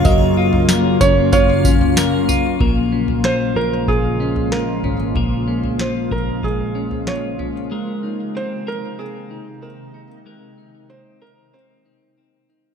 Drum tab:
TB |x---x-x-x-x-x-x-|----------------|----------------|----------------|
SD |----o-------o---|----o-------o---|----o-------o---|----------------|
FT |o--o-------o--o-|o--o-------o--o-|o--o-------o--o-|----------------|
BD |o-----o-o-o-----|o-------o-------|o-----o-o-------|----------------|

TB |----------------|
SD |----------------|
FT |----------------|
BD |----------------|